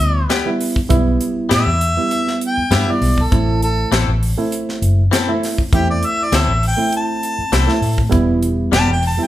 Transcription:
0.00 0.25 D2 medium
0.00 0.20 G3 medium
0.00 0.20 B3 medium
0.00 0.20 E4 medium
0.00 0.28 E5 medium
0.00 closed hi-hat medium
0.30 0.48 G3 medium
0.30 0.49 B3 medium
0.30 0.49 E4 medium
0.30 0.49 G4 medium
0.30 snare loud
0.30 closed hi-hat medium
0.46 0.78 G3 medium
0.46 0.78 B3 medium
0.46 0.79 E4 medium
0.60 open hi-hat medium
0.76 kick medium
0.89 1.16 B1 medium
0.89 1.67 G3 medium
0.89 1.67 B3 medium
0.89 1.67 E4 loud
0.89 kick loud
0.89 closed hi-hat medium
1.21 closed hi-hat medium
1.49 1.64 A2 medium
1.49 1.69 G3 medium
1.49 1.69 B3 medium
1.49 1.69 E4 medium
1.49 1.70 G4 medium
1.49 snare loud
1.49 closed hi-hat medium
1.54 2.40 E5 medium
1.67 1.92 E2 medium
1.81 closed hi-hat medium
1.97 2.62 G3 medium
1.97 2.62 B3 medium
1.97 2.62 E4 medium
2.11 closed hi-hat medium
2.28 snare soft
2.41 closed hi-hat medium
2.47 2.77 G5 medium
2.58 muted fingered electric bass stroke soft
2.71 2.84 G2 medium
2.71 2.90 G3 medium
2.71 2.90 B3 medium
2.71 2.90 E4 medium
2.71 2.91 G4 medium
2.71 snare loud
2.71 closed hi-hat medium
2.75 2.93 E5 medium
2.87 3.19 G3 medium
2.87 3.20 B3 medium
2.87 3.20 E4 medium
2.87 3.24 D5 medium
3.01 3.27 B1 medium
3.01 open hi-hat medium
3.18 kick medium
3.22 3.62 A4 medium
3.31 3.83 A1 medium
3.31 4.08 A3 medium
3.31 4.08 C4 medium
3.31 4.08 E4 medium
3.31 kick loud
3.31 closed hi-hat medium
3.62 3.91 A4 medium
3.62 closed hi-hat medium
3.92 4.05 A1 medium
3.92 4.10 E3 medium
3.92 4.10 C4 medium
3.92 4.11 E4 medium
3.92 4.11 A4 medium
3.92 snare medium
3.92 closed hi-hat medium
4.08 4.33 A1 medium
4.23 open hi-hat medium
4.37 5.02 A3 medium
4.37 5.02 C4 medium
4.37 5.03 E4 medium
4.52 closed hi-hat medium
4.69 snare soft
4.82 5.07 F#1 medium
4.82 closed hi-hat medium
5.11 5.30 E3 medium
5.11 5.31 C4 medium
5.11 5.31 E4 medium
5.11 5.31 A4 medium
5.11 snare loud
5.11 closed hi-hat medium
5.28 5.60 A3 medium
5.28 5.60 C4 medium
5.28 5.61 E4 medium
5.43 snare soft
5.43 open hi-hat medium
5.58 kick medium
5.73 5.98 E2 medium
5.73 6.49 A3 medium
5.73 6.49 C4 medium
5.73 6.49 E4 medium
5.73 5.88 G4 medium
5.73 kick loud
5.73 closed hi-hat medium
5.90 6.08 D5 medium
6.03 6.26 E5 medium
6.03 closed hi-hat medium
6.24 6.38 D5 medium
6.32 6.45 D2 medium
6.32 6.51 E3 medium
6.32 6.51 C4 medium
6.32 6.52 E4 medium
6.32 6.52 A4 medium
6.32 snare loud
6.32 closed hi-hat medium
6.37 6.64 E5 medium
6.48 6.73 A1 medium
6.63 open hi-hat medium
6.67 6.94 G5 medium
6.77 7.42 A3 medium
6.77 7.43 C4 medium
6.77 7.43 E4 medium
6.93 8.11 A5 medium
6.93 closed hi-hat medium
7.23 closed hi-hat medium
7.39 muted fingered electric bass stroke soft
7.52 7.66 C2 loud
7.52 7.71 E3 medium
7.52 7.71 C4 medium
7.52 7.71 E4 medium
7.52 7.72 A4 medium
7.52 snare loud
7.52 closed hi-hat medium
7.66 8.00 A3 medium
7.66 8.00 C4 medium
7.66 8.00 E4 medium
7.66 snare soft
7.81 8.07 A2 medium
7.81 open hi-hat medium
7.98 kick medium
8.09 8.63 E1 medium
8.09 8.88 G3 medium
8.09 8.88 B3 medium
8.09 8.88 E4 medium
8.09 kick loud
8.09 closed hi-hat medium
8.43 closed hi-hat medium
8.72 8.85 E1 medium
8.72 8.91 G3 medium
8.72 8.91 B3 medium
8.72 8.91 E4 medium
8.72 8.92 G4 medium
8.72 8.89 A5 loud
8.72 snare loud
8.72 closed hi-hat medium
8.88 9.13 E1 medium
8.92 9.03 G5 medium
9.03 open hi-hat medium
9.07 9.25 A5 medium
9.17 9.27 G3 medium
9.17 9.27 B3 medium
9.17 9.27 E4 medium
9.24 9.27 G5 medium

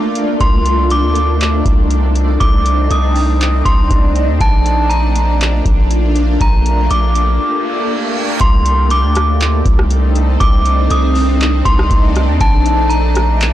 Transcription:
0.00 4.37 A3 medium
0.00 0.37 A#3 medium
0.00 8.37 D4 medium
0.00 0.37 F4 medium
0.15 closed hi-hat medium
0.41 1.04 C2 loud
0.41 4.37 C4 medium
0.41 4.37 D#4 medium
0.41 0.88 C6 loud
0.41 kick loud
0.41 closed hi-hat medium
0.66 closed hi-hat medium
0.90 1.38 D6 loud
0.90 closed hi-hat medium
1.03 1.62 D2 medium
1.15 closed hi-hat medium
1.41 clap loud
1.41 closed hi-hat medium
1.66 2.38 C2 loud
1.66 kick medium
1.66 closed hi-hat medium
1.91 closed hi-hat medium
2.16 closed hi-hat medium
2.40 2.89 C2 loud
2.40 2.87 D6 loud
2.40 kick loud
2.40 closed hi-hat medium
2.66 closed hi-hat medium
2.91 3.63 C2 loud
2.91 3.62 D#6 medium
2.91 closed hi-hat medium
3.16 open hi-hat medium
3.41 clap loud
3.41 closed hi-hat medium
3.65 3.90 C2 loud
3.65 3.89 C6 medium
3.65 kick medium
3.65 closed hi-hat medium
3.91 4.30 C2 loud
3.91 kick medium
3.91 closed hi-hat medium
4.16 closed hi-hat medium
4.28 4.40 D#2 loud
4.41 5.62 A#1 loud
4.41 8.37 A3 medium
4.41 8.37 A#3 medium
4.41 6.39 F4 medium
4.41 4.88 A5 loud
4.41 kick loud
4.41 closed hi-hat medium
4.66 closed hi-hat medium
4.90 5.37 A#5 medium
4.90 closed hi-hat medium
5.16 closed hi-hat medium
5.41 clap loud
5.41 closed hi-hat medium
5.66 6.38 A#1 loud
5.66 kick medium
5.66 closed hi-hat medium
5.91 closed hi-hat medium
6.16 closed hi-hat medium
6.40 6.89 A#1 loud
6.40 8.39 G4 medium
6.40 6.88 A#5 medium
6.40 kick loud
6.40 closed hi-hat medium
6.66 closed hi-hat medium
6.91 7.39 A#1 loud
6.91 7.87 D6 medium
6.91 closed hi-hat medium
7.15 closed hi-hat medium
7.41 reverse cymbal medium
8.40 9.05 C2 loud
8.40 13.53 A3 medium
8.40 12.37 C4 medium
8.40 13.53 D4 medium
8.40 12.37 D#4 medium
8.40 8.88 C6 loud
8.40 kick loud
8.40 closed hi-hat medium
8.66 closed hi-hat medium
8.90 9.38 D6 loud
8.90 closed hi-hat medium
9.03 9.62 D2 loud
9.15 cross-stick loud
9.15 closed hi-hat medium
9.41 clap loud
9.41 closed hi-hat medium
9.65 10.38 C2 loud
9.65 kick medium
9.65 closed hi-hat medium
9.79 cross-stick loud
9.90 closed hi-hat medium
10.15 closed hi-hat medium
10.40 10.89 C2 loud
10.40 10.87 D6 loud
10.40 kick loud
10.40 closed hi-hat medium
10.65 closed hi-hat medium
10.90 11.63 C2 loud
10.90 11.62 D#6 medium
10.90 closed hi-hat medium
11.15 open hi-hat medium
11.41 clap loud
11.41 closed hi-hat medium
11.65 11.90 C2 loud
11.65 11.89 C6 medium
11.65 kick medium
11.65 closed hi-hat medium
11.79 cross-stick loud
11.91 12.30 C2 loud
11.91 kick loud
11.91 closed hi-hat medium
12.16 cross-stick medium
12.16 closed hi-hat medium
12.28 12.40 D#2 loud
12.41 13.53 A#1 loud
12.41 13.53 A#3 medium
12.41 13.53 F4 medium
12.41 12.88 A5 loud
12.41 kick loud
12.41 closed hi-hat medium
12.66 closed hi-hat medium
12.89 13.37 A#5 medium
12.89 closed hi-hat medium
13.15 cross-stick loud
13.15 closed hi-hat medium
13.41 clap loud
13.41 closed hi-hat medium

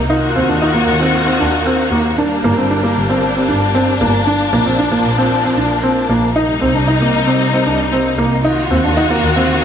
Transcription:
0.00 8.41 A#3 medium
0.10 2.17 D#3 medium
0.10 0.27 D#4 medium
0.10 2.17 F4 medium
0.10 2.17 F#4 medium
0.36 0.46 D#2 medium
0.36 0.44 C4 medium
0.49 0.69 D#2 medium
0.49 0.57 D4 medium
0.62 0.70 D#4 medium
0.75 0.92 A#3 medium
0.88 1.08 D#2 medium
1.01 1.18 C4 medium
1.27 1.35 C4 medium
1.40 1.61 D#2 medium
1.40 1.57 D4 medium
1.66 1.83 C4 medium
1.92 2.13 D#2 medium
1.92 2.09 A#3 medium
2.18 4.25 G3 medium
2.18 2.35 D4 medium
2.18 6.32 D4 medium
2.44 2.55 G1 medium
2.44 2.53 A#3 medium
2.57 2.78 G1 medium
2.57 2.66 C4 medium
2.71 2.79 D4 medium
2.83 3.00 A#3 medium
2.97 3.17 G1 medium
3.09 3.26 C4 medium
3.36 3.44 C4 medium
3.49 3.70 G1 medium
3.49 3.65 D4 medium
3.75 3.92 C4 medium
4.01 4.22 G1 medium
4.01 4.18 A#3 medium
4.27 6.34 F3 medium
4.27 4.44 D4 medium
4.53 4.64 A#1 medium
4.53 4.62 A#3 medium
4.66 4.87 A#1 medium
4.66 4.74 C4 medium
4.79 4.87 D4 medium
4.92 5.09 A#3 medium
5.05 5.26 A#1 medium
5.18 5.35 C4 medium
5.45 5.53 C4 medium
5.57 5.78 A#1 medium
5.57 5.74 D4 medium
5.83 6.00 C4 medium
6.10 6.30 A#1 medium
6.10 6.26 A#3 medium
6.36 8.43 C3 medium
6.36 8.43 G3 medium
6.36 6.53 D#4 medium
6.36 8.43 D#4 medium
6.61 6.72 C2 loud
6.61 6.70 C4 medium
6.75 6.96 C2 medium
6.75 6.83 D4 medium
6.87 6.96 D#4 medium
7.01 7.18 A#3 medium
7.14 7.35 C2 medium
7.27 7.44 C4 medium
7.53 7.62 C4 medium
7.66 7.87 C2 medium
7.66 7.83 D4 medium
7.92 8.09 C4 medium
8.18 8.39 C2 medium
8.18 8.35 A#3 medium
8.44 9.64 D#3 medium
8.44 9.64 A#3 medium
8.44 8.61 D#4 medium
8.44 9.64 F4 medium
8.44 9.64 F#4 medium
8.71 8.81 D#2 medium
8.71 8.79 C4 medium
8.84 9.04 D#2 medium
8.84 8.92 D4 medium
8.97 9.05 D#4 medium
9.10 9.27 A#3 medium
9.23 9.43 D#2 medium
9.36 9.53 C4 medium

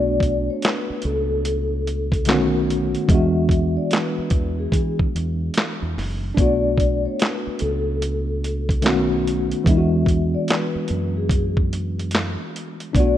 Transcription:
0.00 0.48 B1 loud
0.00 2.22 A3 medium
0.00 2.23 B3 medium
0.00 2.21 D4 medium
0.00 2.24 F#4 medium
0.00 0.44 D5 loud
0.20 kick medium
0.20 closed hi-hat medium
0.50 0.62 C#5 medium
0.62 1.00 B4 medium
0.62 snare loud
0.62 clap medium
0.62 closed hi-hat medium
0.90 muted fingered electric bass stroke soft
1.02 2.28 C#2 medium
1.02 2.23 A4 medium
1.02 closed hi-hat medium
1.45 closed hi-hat medium
1.87 closed hi-hat medium
2.12 kick medium
2.12 closed hi-hat soft
2.25 2.95 B1 medium
2.25 2.35 D3 medium
2.25 3.09 A3 medium
2.25 3.09 B3 medium
2.25 3.10 C#4 medium
2.25 snare loud
2.25 closed hi-hat medium
2.30 3.12 D#3 medium
2.30 3.10 F#4 medium
2.30 clap medium
2.70 closed hi-hat medium
2.95 closed hi-hat soft
3.08 3.77 E2 loud
3.08 6.33 E3 medium
3.08 6.34 G#3 medium
3.08 6.35 B3 medium
3.08 3.72 E5 medium
3.08 kick loud
3.08 closed hi-hat medium
3.13 6.33 D4 medium
3.13 6.36 F#4 medium
3.49 kick medium
3.49 closed hi-hat medium
3.77 3.90 D5 medium
3.91 4.55 B4 medium
3.91 snare medium
3.91 clap medium
3.91 closed hi-hat medium
4.19 muted fingered electric bass stroke soft
4.30 4.66 E2 medium
4.30 kick medium
4.30 closed hi-hat medium
4.59 4.96 G#4 medium
4.72 5.07 E3 loud
4.72 kick medium
4.72 closed hi-hat medium
4.99 kick medium
5.15 5.49 E2 medium
5.15 closed hi-hat medium
5.54 snare loud
5.54 closed hi-hat medium
5.59 clap medium
5.82 5.94 E2 medium
5.97 6.31 F#1 medium
5.97 snare soft
5.97 open hi-hat soft
6.35 7.05 B1 loud
6.35 8.79 A3 medium
6.35 8.80 B3 medium
6.35 8.78 D4 medium
6.35 7.01 D5 loud
6.35 kick loud
6.35 closed hi-hat medium
6.41 8.82 F#4 medium
6.78 kick medium
6.78 closed hi-hat medium
7.05 7.18 C#5 medium
7.19 7.57 B4 medium
7.19 snare medium
7.19 clap medium
7.19 closed hi-hat medium
7.47 muted fingered electric bass stroke soft
7.59 8.85 C#2 medium
7.59 8.80 A4 medium
7.59 closed hi-hat medium
8.02 closed hi-hat medium
8.44 closed hi-hat medium
8.69 kick medium
8.69 closed hi-hat soft
8.82 9.52 B1 medium
8.82 9.65 D#3 medium
8.82 9.65 A3 medium
8.82 9.66 B3 medium
8.82 9.66 C#4 medium
8.82 9.67 F#4 medium
8.82 closed hi-hat medium
8.86 snare loud
8.86 clap medium
9.27 closed hi-hat medium
9.51 closed hi-hat soft
9.64 10.34 E2 loud
9.64 12.90 E3 medium
9.64 12.91 G#3 medium
9.64 12.92 B3 medium
9.64 10.30 E5 medium
9.64 kick loud
9.64 closed hi-hat medium
9.69 12.92 D4 medium
9.69 9.77 E4 medium
9.77 12.96 F#4 medium
10.06 kick medium
10.06 closed hi-hat medium
10.34 10.47 D5 medium
10.48 11.12 B4 medium
10.48 snare medium
10.48 clap medium
10.48 closed hi-hat medium
10.75 muted fingered electric bass stroke soft
10.88 12.35 F#2 medium
10.88 closed hi-hat medium
11.17 11.53 G#4 medium
11.29 kick loud
11.29 closed hi-hat medium
11.57 kick medium
11.73 closed hi-hat medium
11.99 closed hi-hat soft
12.11 snare loud
12.11 closed hi-hat medium
12.16 clap medium
12.56 closed hi-hat medium
12.80 closed hi-hat soft
12.93 13.18 B1 loud
12.93 13.18 A3 medium
12.93 13.18 B3 medium
12.93 13.18 D4 medium
12.93 13.18 D5 loud
12.93 kick loud
12.93 closed hi-hat medium
13.00 13.18 F#4 medium

